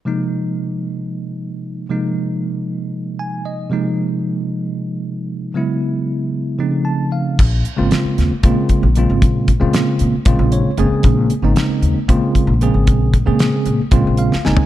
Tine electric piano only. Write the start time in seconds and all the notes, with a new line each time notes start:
0.05 C3 F3 G#3 A#3 D#4
1.89 C3 F3 G#3 A#3 D#4
3.19 G#5
3.46 D#5
3.70 C3 F3 G#3 A#3 D#4
5.54 C#3 F#3 G#3 B3 E4
6.58 C#3 F3 A3 C4 D#4
6.85 A5
7.12 F5
7.77 C#3 G#3 A#3 C4 F4
8.44 C#3 G#3 A#3 C4 F4
8.97 C#3 G#3 A#3 C4 F4
9.60 C#3 G#3 A#3 C4 F4
10.26 C#3 G#3 A#3 C4 F4
10.53 C#5
10.78 C#3 G#3 A#3 C4 G#4 G#5
11.43 C#3 G#3 A#3 C4 D#4
12.08 C#3 G#3 A#3 C4 F4
12.61 C#3 G#3 A#3 C4 G#4
13.26 C#3 G#3 A#3 C4 G#4
13.91 C#3 G#3 A#3 C4 F4
14.19 F5
14.45 C#3 G#3 A#3 C4 D#4 G#5